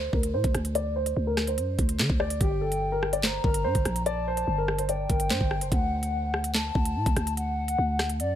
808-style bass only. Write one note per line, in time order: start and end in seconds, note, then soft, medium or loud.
0.13 0.35 D2 loud
0.34 0.44 A2 loud
0.44 0.54 D2 loud
0.54 1.14 D2 loud
1.17 1.59 D2 loud
1.58 1.78 F#2 loud
1.79 2.01 D2 loud
1.99 2.09 D3 loud
2.10 2.39 D2 loud
2.41 3.40 G1 loud
3.44 3.66 G1 loud
3.65 3.75 G2 loud
3.75 3.85 G1 loud
3.85 4.45 A#1 loud
4.47 5.07 G1 loud
5.10 5.32 G1 loud
5.30 5.40 G2 loud
5.41 5.63 G1 loud
5.61 5.71 F#1 medium
5.72 6.71 D2 loud
6.75 6.97 D2 loud
6.96 7.06 A2 loud
7.06 7.16 D2 loud
7.16 7.76 D2 loud
7.78 8.21 D2 loud
8.20 8.35 F#2 loud